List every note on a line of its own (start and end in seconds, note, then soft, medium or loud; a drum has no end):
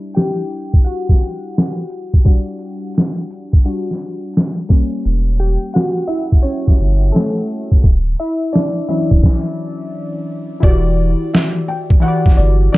0.00 2.22 G3 soft
0.00 2.22 D4 soft
0.00 2.22 E4 medium
0.14 0.82 G4 medium
0.14 0.87 G5 loud
0.14 snare medium
0.14 closed hi-hat medium
0.50 closed hi-hat medium
0.72 kick medium
0.72 closed hi-hat soft
0.84 1.87 F#4 medium
0.84 1.86 F#5 medium
0.84 closed hi-hat medium
1.09 kick medium
1.09 snare soft
1.20 closed hi-hat medium
1.55 snare medium
1.55 closed hi-hat medium
1.90 closed hi-hat medium
2.14 kick medium
2.25 2.76 G3 soft
2.25 2.76 D4 soft
2.25 2.77 F#4 medium
2.25 kick loud
2.25 closed hi-hat medium
2.59 closed hi-hat soft
2.94 snare loud
2.94 closed hi-hat medium
3.31 closed hi-hat medium
3.52 kick medium
3.52 closed hi-hat soft
3.64 3.97 G3 soft
3.64 3.97 D4 soft
3.64 3.97 F#4 medium
3.64 closed hi-hat medium
3.91 snare soft
3.99 closed hi-hat medium
4.34 snare loud
4.34 closed hi-hat medium
4.69 7.45 G3 medium
4.69 7.45 A#3 soft
4.69 6.43 C#4 medium
4.69 kick medium
4.69 closed hi-hat medium
5.05 5.57 E1 loud
5.05 closed hi-hat medium
5.38 5.72 G4 medium
5.38 5.76 G5 medium
5.38 closed hi-hat soft
5.73 6.07 F#4 medium
5.73 6.10 F#5 medium
5.73 snare loud
5.73 closed hi-hat medium
6.08 6.23 E4 medium
6.08 6.21 E5 medium
6.08 closed hi-hat medium
6.31 kick medium
6.31 closed hi-hat soft
6.42 7.10 C#4 medium
6.42 7.09 C#5 medium
6.42 closed hi-hat medium
6.68 kick medium
6.68 snare soft
6.78 7.11 G1 medium
6.78 closed hi-hat medium
7.12 7.68 A3 medium
7.12 7.67 A4 medium
7.12 snare medium
7.12 closed hi-hat medium
7.48 closed hi-hat medium
7.72 kick medium
7.83 8.15 D1 medium
7.83 kick loud
7.83 closed hi-hat medium
8.17 8.52 E4 medium
8.17 8.52 E5 medium
8.17 closed hi-hat soft
8.40 closed hi-hat soft
8.52 8.68 D4 medium
8.52 8.67 D5 medium
8.52 snare loud
8.52 closed hi-hat medium
8.88 10.59 E3 medium
8.88 10.59 F#3 soft
8.88 10.60 C#4 medium
8.88 10.25 E4 medium
8.88 10.24 E5 medium
8.88 closed hi-hat medium
9.10 9.22 D1 medium
9.10 kick medium
9.10 closed hi-hat soft
9.23 kick loud
9.23 snare medium
10.60 11.15 E1 medium
10.60 11.79 E3 medium
10.60 11.80 E4 medium
10.60 11.81 F#4 medium
10.60 11.29 D5 medium
10.60 kick loud
10.66 11.82 G4 medium
10.66 11.83 D5 medium
11.34 11.69 E5 medium
11.34 snare loud
11.68 11.76 G5 medium
11.90 kick medium
12.00 12.78 E3 medium
12.00 12.78 E4 medium
12.00 12.78 F#4 medium
12.00 12.38 F#5 loud
12.06 12.78 G4 medium
12.06 12.78 D5 medium
12.26 kick medium
12.26 snare soft
12.37 12.69 G1 medium
12.37 12.71 D5 medium
12.72 12.78 D5 medium
12.72 snare loud